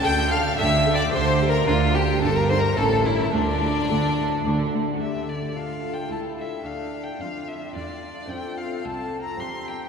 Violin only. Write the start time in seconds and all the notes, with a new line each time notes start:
0.04 G5
0.31 F5
0.59 E5
0.95 D5
1.12 C5
1.49 A#4
1.68 F4
1.95 G4
2.22 A4
2.36 A#4
2.50 C5
2.59 A#4
2.77 A4
3.06 E4
3.32 D4
5.01 E5
5.29 D5
5.57 F5
5.93 G5
6.12 A5
6.39 E5
6.66 F5
7.03 G5
7.21 F5
7.48 E5
7.75 D5
8.29 G5
8.58 F5
8.85 A5
9.22 A#5
9.40 C6
9.68 G5